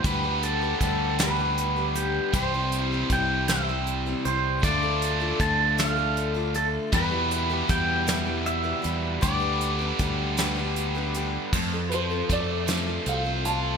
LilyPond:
<<
  \new Staff \with { instrumentName = "Upright piano" } { \time 6/8 \key g \mixolydian \tempo 4. = 52 r2. | r2. | r2. | r2. |
r2. | r8 <b' c''>8 d''4 f''8 a''8 | }
  \new Staff \with { instrumentName = "Pedal steel guitar" } { \time 6/8 \key g \mixolydian b'8 a'8 a'8 b'4 g'8 | c''4 g''8 e''4 c''8 | d''4 a''8 f''4 a'8 | b'4 g''4 e''4 |
d''2 r4 | r2. | }
  \new Staff \with { instrumentName = "Twelve-string acoustic guitar" } { \time 6/8 \key g \mixolydian <d g d' g' b'>16 <d' g' b'>8 <d' g' b'>16 <g d' g' b'>8 <d g d' g' b'>16 <d' g' b'>8 <d' g' b'>16 <g d' g' b'>8 | <c e g c' e' c''>16 <g c' e' c''>8 <g c' e' c''>16 <g c' e' c''>8 <c e g c' e' c''>16 <g c' e' c''>8 <g c' e' c''>16 <g c' e' c''>8 | <d a d' f' a'>16 <d' f' a'>8 <d' f' a'>16 <a d' f' a'>8 <d a d' f' a'>16 <d' f' a'>8 <d' f' a'>16 <a d' f' a'>8 | <e g e' g' b'>16 <e' g' b'>8 <e' g' b'>16 <g e' g' b'>8 <e g e' g' b'>16 <e' g' b'>8 <e' g' b'>16 <g e' g' b'>8 |
<d g d' g' b'>16 <d' g' b'>8 <d' g' b'>16 <g d' g' b'>8 <d g d' g' b'>16 <d' g' b'>8 <d' g' b'>16 <g d' g' b'>8 | <f a c' f' a'>16 <c' f' a'>8 <c' f' a'>16 <a c' f' a'>8 <f a c' f' a'>16 <c' f' a'>8 <c' f' a'>16 <a c' f' a'>8 | }
  \new Staff \with { instrumentName = "Overdriven electric guitar" } { \clef bass \time 6/8 \key g \mixolydian <d g b g'>2. | <c e g c' g'>2. | <d a d' f'>2. | <e, b, e g b e'>2. |
<d g b g'>2. | f,8 f8 a8 f8 c'8 f'8 | }
  \new Staff \with { instrumentName = "Fingered electric bass" } { \clef bass \time 6/8 \key g \mixolydian d,4 d,2 | c,4 c,4. c,8 | d,4 d,2 | e,4 e,4. e,8 |
d,4 d,2 | f,4 f,4 c,4 | }
  \new DrumStaff \with { instrumentName = "Drums" } \drummode { \time 6/8 <hh bd>8 hh8 <hh bd>8 <hh sn>8 hh8 hh8 | <hh bd>8 hh8 <hh bd>8 <hh sn>8 hh8 hh8 | <hh bd>8 hh8 <hh bd>8 <hh sn>8 hh8 hh8 | <hh bd>8 hh8 <hh bd>8 <hh sn>8 hh8 hh8 |
<hh bd>8 hh8 <hh bd>8 <hh sn>8 hh8 hh8 | <cymc bd>8 hh8 <hh bd>8 <hh sn>8 hh8 hh8 | }
>>